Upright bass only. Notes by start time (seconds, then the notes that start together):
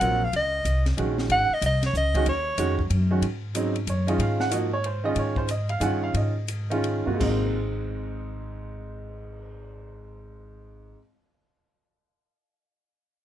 0.01 A#1
0.33 C#2
0.65 C2
0.98 A#1
1.29 G#1
1.50 muted upright bass stroke
1.61 C2
1.93 C#2
2.26 D#2
2.58 F2
2.90 F#2
3.21 G#2
3.87 F#2
4.19 G#2
5.16 G#2
5.80 G2
6.14 G#2
7.07 G2
7.20 G#1